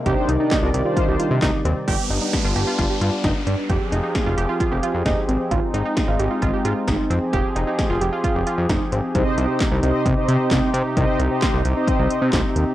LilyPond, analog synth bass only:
\new Staff \with { instrumentName = "Analog synth bass" } { \clef bass \time 4/4 \key c \minor \tempo 4 = 132 c,16 r16 c,16 r8 c,16 c,16 r8 c,16 r16 c16 c,16 r16 ees,16 r16 | g,,16 r16 g,,16 r8 g,,16 g,,16 r16 g,,16 r16 g,16 r16 g,,16 r16 g,16 r16 | f,,16 r16 f,,16 r8 f,,16 f,,16 r8 f,,16 r16 f,16 f,,16 r16 aes,,16 r16 | aes,,16 r16 aes,,16 r8 aes,,16 aes,,16 r16 aes,,16 r16 aes,16 r16 aes,,16 r16 f,16 r16 |
f,,16 r16 f,,16 r8 f,,16 f,,16 r8 f,,16 r16 f,16 f,,16 r16 aes,,16 r16 | c,16 r16 c,16 r8 c,16 c,16 r16 c,16 r16 c16 r16 c,16 r16 c16 r16 | c,16 r16 c,16 r8 c,16 c,16 r8 c,16 r16 c16 c,16 r16 ees,16 r16 | }